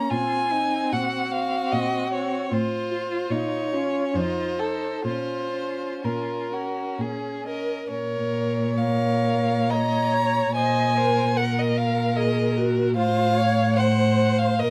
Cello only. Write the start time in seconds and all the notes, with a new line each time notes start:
0.11 A#2
0.92 A#2
1.73 A#2
2.51 A2
3.30 A#2
4.15 F2
5.04 A#2
6.04 A#2
6.99 A#2
7.90 A#2
10.56 A#2
12.96 A2
14.59 A#2